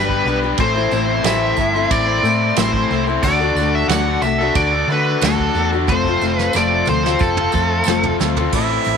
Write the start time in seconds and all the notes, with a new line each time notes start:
Already playing: G1 G3 D4 G4 B4
0.08 B3 D4 B4, kick
0.24 B1 G3 B3 D4 B4, tambourine
0.29 G4
0.41 B3 D4 G4 B4
0.57 A1 A2 E3 A3 C4 E4 A4 C5, kick, ride bell
0.73 C4 E4 A4 C5
0.78 A3
0.91 A1 A3 C4 E4 A4, tambourine
1.23 A1 A2 E3 A3 C4 E4 A4 C5 E5, snare, ride bell, tambourine
1.41 C4 E4 C5
1.57 G1 A3 C4, muted overdriven electric guitar stroke, kick, tambourine
1.61 E4 A4
1.74 A3 C4 E4 A4 C5
1.91 A1 D5, kick, ride bell, tambourine
2.06 C4 E4 C5
2.23 A2 A3 C4 E4 A4 C5, tambourine
2.56 A1 A2 E3 A3 C4 E4 A4 C5, snare, ride bell, tambourine
2.73 C4 E4 C5, kick
2.90 C2 A3 C4 E4 A4 C5, tambourine
3.07 A3 C4 E4 A4 C5
3.21 D2 D3 A3 D4 F#4 A4 D5, kick, crash
3.39 D4 F#4 A4
3.55 D2, tambourine
3.59 A3 D4 F#4 A4
3.75 E5
3.88 D2 D3 A3 D4 F#4 A4 F#5, snare, ride bell, tambourine
4.05 D4 F#4 A4
4.22 C2 A3 D4 F#4 E5, muted overdriven electric guitar stroke, tambourine
4.26 A4
4.39 D4 F#4 A4
4.55 D2 D5, kick, ride bell, tambourine
4.73 D4 F#4 A4
4.87 D3 A3 D4 F#4 A4
4.92 B4
5.21 D2 D3 A3 D4 F#4 A4, snare, ride bell, tambourine
5.38 D4 F#4 A4, kick
5.55 E2 D3 A3 D4 F#4 A4, tambourine
5.70 D4 F#4 A4
5.88 F1 F3 A3 C4 F4 A4 C5, kick, high tom, tambourine
6.05 C4 F4 A4, kick
6.21 F1 A3 C4 F4 A4, tambourine
6.37 B4, snare
6.53 F1 F3 A3 C4 F4 A4 D5, snare, tambourine
6.69 C4 F4 A4
6.86 D2 A3 C4 C5, muted overdriven electric guitar stroke, mid tom, tambourine
6.90 F4 A4
7.03 C4 F4 A4, snare
7.19 F1 A4, kick, tambourine
7.36 C4 F4 A4, mid tom
7.51 F2 A3 C4 F4 A4, kick, tambourine
7.84 F1 F3 A3 C4, snare, tambourine
7.88 F4 A4
8.02 C4 F4 A4, floor tom
8.18 D2 A3 C4 F4 A4, snare, tambourine
8.35 C4 F4 A4, floor tom
8.52 A1 A2 E3 A3 C4 E4 A4 E5, kick, crash
8.85 A1, closed hi-hat, tambourine